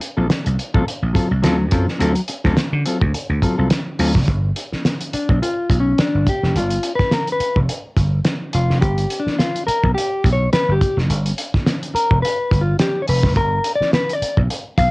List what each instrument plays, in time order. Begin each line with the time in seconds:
0.00 muted clean electric guitar stroke, closed hi-hat
0.17 slap bass A#1, clean electric guitar F#3 C4 F4 A4
0.30 snare, closed hi-hat
0.45 slap bass C2, muted clean electric guitar stroke, closed hi-hat
0.59 closed hi-hat
0.74 slap bass A1, clean electric guitar F#3 C4 F4 A4, kick
0.86 muted slap bass stroke, closed hi-hat
1.02 slap bass A#1
1.13 clean electric guitar F#3 C4 F4 A4, kick, closed hi-hat
1.30 slap bass C2, muted clean electric guitar stroke
1.42 slap bass D2, clean electric guitar F#3 C4 F4 A4, snare, closed hi-hat
1.59 muted clean electric guitar stroke
1.71 slap bass F#2, clean electric guitar F#3 C4 F4 A4, kick, closed hi-hat
1.88 muted clean electric guitar stroke, snare
1.99 slap bass D2, clean electric guitar F#3 C4 F4 A4, closed hi-hat
2.15 muted clean electric guitar stroke, closed hi-hat
2.28 muted clean electric guitar stroke, closed hi-hat
2.44 slap bass D2, clean electric guitar F#3 C4 F4 A4, kick, snare
2.56 muted slap bass stroke, muted clean electric guitar stroke, snare, closed hi-hat
2.73 slap bass D3
2.86 clean electric guitar F#3 C4 F4 A4, closed hi-hat
3.00 slap bass D2, muted clean electric guitar stroke, kick
3.14 muted clean electric guitar stroke, closed hi-hat
3.29 slap bass D2, muted clean electric guitar stroke
3.42 clean electric guitar F#3 C4 F4 A4, kick, closed hi-hat
3.58 slap bass C2, clean electric guitar F#3 C4 F4 A4
3.70 snare, closed hi-hat
3.99 slap bass D2, clean electric guitar F#3 C4 F4 A4, open hi-hat
4.14 slap bass F1, muted clean electric guitar stroke, kick, snare
4.28 slap bass G1, kick, closed hi-hat
4.56 closed hi-hat
4.72 muted slap bass stroke, snare
4.85 snare, closed hi-hat
5.01 closed hi-hat
5.13 clean electric guitar D4, muted slap bass stroke, closed hi-hat
5.29 slap bass B1, kick
5.42 clean electric guitar F4, closed hi-hat
5.70 slap bass B1, kick, closed hi-hat
5.80 clean electric guitar C#4
5.98 clean electric guitar D4, muted slap bass stroke, snare, closed hi-hat
6.15 slap bass G1
6.27 clean electric guitar G4, kick, closed hi-hat
6.43 slap bass F1, snare
6.55 slap bass G1, clean electric guitar F4, closed hi-hat
6.70 closed hi-hat
6.83 closed hi-hat
6.95 clean electric guitar B4, kick, snare
7.00 muted slap bass stroke
7.11 clean electric guitar A#4, snare, closed hi-hat
7.27 closed hi-hat
7.32 clean electric guitar B4
7.40 muted slap bass stroke, closed hi-hat
7.56 slap bass F1, kick
7.69 closed hi-hat
7.96 slap bass G1, kick, closed hi-hat
8.24 snare, closed hi-hat
8.53 slap bass F1, clean electric guitar F4, closed hi-hat
8.70 slap bass F1, snare
8.81 slap bass G1, clean electric guitar G4, kick, closed hi-hat
8.98 closed hi-hat
9.10 closed hi-hat
9.20 clean electric guitar D4
9.26 muted slap bass stroke, snare
9.39 clean electric guitar F4, snare, closed hi-hat
9.56 closed hi-hat
9.67 clean electric guitar A#4, muted slap bass stroke, closed hi-hat
9.84 slap bass B1, kick
9.95 clean electric guitar G4, closed hi-hat
10.24 slap bass B1, kick, closed hi-hat
10.33 clean electric guitar C#5
10.53 clean electric guitar B4, muted slap bass stroke, snare, closed hi-hat
10.69 slap bass G1, clean electric guitar G4
10.81 kick, closed hi-hat
10.97 slap bass F1, snare
11.09 slap bass G1, closed hi-hat
11.26 closed hi-hat
11.38 closed hi-hat
11.54 muted slap bass stroke, kick, snare
11.66 snare, closed hi-hat
11.83 closed hi-hat
11.94 clean electric guitar A#4, muted slap bass stroke, closed hi-hat
12.11 slap bass F1, kick
12.22 clean electric guitar B4, closed hi-hat
12.51 slap bass G1, kick, closed hi-hat
12.61 clean electric guitar F4
12.79 clean electric guitar G4, snare, closed hi-hat
13.02 clean electric guitar C#5
13.08 slap bass F1, clean electric guitar B4, open hi-hat
13.23 slap bass F1, kick, snare
13.36 slap bass G1, clean electric guitar A#4, kick, closed hi-hat
13.64 closed hi-hat
13.76 clean electric guitar D5
13.81 muted slap bass stroke, snare
13.93 clean electric guitar B4, snare, closed hi-hat
14.09 clean electric guitar D5, closed hi-hat
14.22 muted slap bass stroke, closed hi-hat
14.37 slap bass B1, kick
14.50 closed hi-hat
14.78 slap bass B1, clean electric guitar F5, kick, closed hi-hat